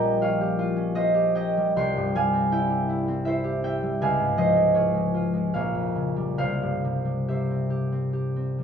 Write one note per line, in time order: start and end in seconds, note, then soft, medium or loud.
0.00 1.78 A#1 medium
0.00 1.79 A#2 medium
0.00 1.79 F3 medium
0.00 1.56 G3 medium
0.00 1.79 A#3 medium
0.00 0.75 C#4 medium
0.00 0.20 F4 medium
0.00 0.22 C#5 medium
0.00 0.94 D#5 medium
0.00 0.20 F5 medium
0.00 1.34 G5 loud
0.00 1.79 A#5 loud
0.21 0.58 F4 medium
0.21 1.80 C#5 medium
0.21 1.79 F5 loud
0.41 1.13 G4 medium
0.59 0.93 F4 medium
0.76 1.34 C#4 medium
0.94 1.80 F4 medium
0.94 3.26 C5 medium
0.94 1.35 D#5 loud
1.14 2.68 G4 medium
1.35 1.80 C#4 medium
1.35 1.81 D#5 medium
1.35 1.77 G5 loud
1.57 2.14 G3 medium
1.76 4.05 C2 medium
1.76 2.51 G5 loud
1.76 4.05 C6 loud
1.97 4.05 G2 medium
2.15 3.82 G3 medium
2.15 4.01 F5 medium
2.15 2.78 G#5 loud
2.33 3.07 C4 medium
2.52 2.88 E4 medium
2.52 3.24 E5 medium
2.52 3.62 G5 loud
2.69 3.43 G4 medium
2.89 3.24 E4 medium
3.08 3.62 C4 medium
3.25 4.05 E4 medium
3.25 4.05 C5 medium
3.25 3.63 E5 loud
3.44 4.04 G4 medium
3.63 4.05 C4 medium
3.63 4.05 E5 medium
3.63 4.05 G5 loud
3.83 4.05 G3 medium
4.01 5.58 C#2 medium
4.01 5.53 F5 medium
4.01 5.58 G#5 loud
4.20 5.58 G#2 medium
4.37 6.43 F3 medium
4.37 5.58 C5 medium
4.37 5.02 D#5 loud
4.56 4.93 G#3 medium
4.74 5.13 F4 medium
4.74 5.58 G#4 medium
4.74 5.54 C#5 medium
4.94 5.32 G#3 medium
5.14 6.44 F4 medium
5.34 5.58 G#3 medium
5.54 6.44 A#1 medium
5.54 6.44 C#5 medium
5.54 6.37 F5 loud
5.74 6.43 F2 medium
5.95 6.43 C#3 medium
6.16 7.04 G3 medium
6.38 8.64 C2 medium
6.38 7.28 C5 medium
6.38 8.64 F5 loud
6.62 8.64 G2 medium
6.84 8.64 C3 medium
7.05 8.57 G3 medium
7.28 7.69 G4 medium
7.28 8.64 C5 soft
7.28 8.64 E5 medium
7.50 7.91 C4 soft
7.70 8.12 G4 medium
7.92 8.35 C4 medium
8.13 8.64 G4 medium
8.36 8.64 C4 medium
8.59 8.64 G3 soft